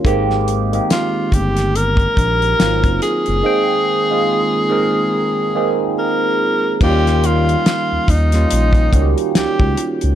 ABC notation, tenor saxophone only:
X:1
M:4/4
L:1/8
Q:"Swing 16ths" 1/4=71
K:Ab
V:1 name="Tenor saxophone"
z2 F G B3 A- | A6 B2 | G F2 E3 G z |]